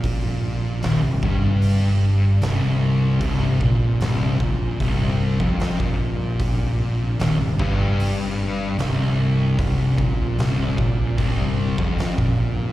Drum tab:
HH |o---o---o---o---|o---o---o---o---|o---o---o---o---|o---o---o---o---|
SD |----o-------o---|----o-------o---|----o-------o---|----o-------o---|
BD |o-----o---------|o-o---o-o--o-o--|o-----o---------|o-o---o-o--o-o--|